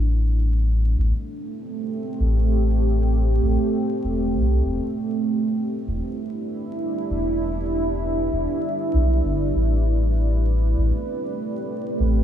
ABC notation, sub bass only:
X:1
M:4/4
L:1/8
Q:"Swing 16ths" 1/4=98
K:Ador
V:1 name="Sub bass" clef=bass
A,,,3 A,,, z3 A,,,- | A,,,3 A,,, z E,,, C,, E,,, | z3 E,,, z3 E,,,- | E,,,3 E,,, z B,,, G,,, A,,,- |
A,,,3 A,,, z3 A,,, |]